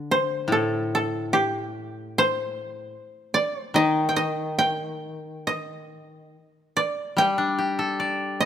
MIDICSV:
0, 0, Header, 1, 3, 480
1, 0, Start_track
1, 0, Tempo, 817439
1, 294, Time_signature, 2, 2, 24, 8
1, 2210, Tempo, 860832
1, 3650, Tempo, 825309
1, 4876, End_track
2, 0, Start_track
2, 0, Title_t, "Koto"
2, 0, Program_c, 0, 107
2, 0, Note_on_c, 0, 74, 80
2, 67, Note_on_c, 0, 72, 81
2, 251, Note_off_c, 0, 74, 0
2, 306, Note_on_c, 0, 69, 73
2, 554, Note_off_c, 0, 69, 0
2, 557, Note_on_c, 0, 69, 77
2, 781, Note_on_c, 0, 67, 89
2, 1074, Note_off_c, 0, 72, 0
2, 1282, Note_on_c, 0, 72, 103
2, 1674, Note_off_c, 0, 69, 0
2, 1962, Note_on_c, 0, 74, 91
2, 1979, Note_off_c, 0, 67, 0
2, 2109, Note_off_c, 0, 72, 0
2, 2109, Note_off_c, 0, 74, 0
2, 2109, Note_on_c, 0, 72, 91
2, 2206, Note_on_c, 0, 75, 97
2, 2240, Note_off_c, 0, 72, 0
2, 2390, Note_on_c, 0, 79, 65
2, 2431, Note_off_c, 0, 75, 0
2, 2433, Note_on_c, 0, 75, 86
2, 2666, Note_off_c, 0, 79, 0
2, 2668, Note_on_c, 0, 79, 92
2, 3159, Note_off_c, 0, 75, 0
2, 3162, Note_on_c, 0, 75, 83
2, 3419, Note_off_c, 0, 79, 0
2, 3894, Note_on_c, 0, 74, 88
2, 3929, Note_off_c, 0, 75, 0
2, 4136, Note_on_c, 0, 79, 86
2, 4825, Note_off_c, 0, 74, 0
2, 4847, Note_on_c, 0, 75, 95
2, 4876, Note_off_c, 0, 75, 0
2, 4876, Note_off_c, 0, 79, 0
2, 4876, End_track
3, 0, Start_track
3, 0, Title_t, "Koto"
3, 0, Program_c, 1, 107
3, 0, Note_on_c, 1, 50, 44
3, 280, Note_on_c, 1, 45, 57
3, 770, Note_off_c, 1, 50, 0
3, 1715, Note_off_c, 1, 45, 0
3, 2197, Note_on_c, 1, 51, 56
3, 3644, Note_off_c, 1, 51, 0
3, 4127, Note_on_c, 1, 55, 55
3, 4251, Note_on_c, 1, 62, 46
3, 4371, Note_on_c, 1, 67, 42
3, 4488, Note_on_c, 1, 69, 50
3, 4610, Note_on_c, 1, 74, 50
3, 4876, Note_off_c, 1, 55, 0
3, 4876, Note_off_c, 1, 62, 0
3, 4876, Note_off_c, 1, 67, 0
3, 4876, Note_off_c, 1, 69, 0
3, 4876, Note_off_c, 1, 74, 0
3, 4876, End_track
0, 0, End_of_file